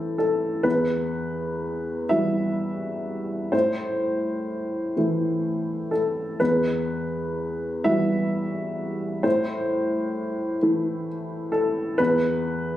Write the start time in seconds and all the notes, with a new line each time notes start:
Already playing: E3 A3 A4
0.18 A4
0.63 E2 B4
2.09 E3 G3 F#4 E5
3.52 A2 C5
4.96 E3 A3 E4
5.91 A4
6.40 E2 B4
7.84 E3 G3 F#4 E5
9.23 A2 C5
10.63 E3 A3 E4
11.52 A4
11.98 E2 B4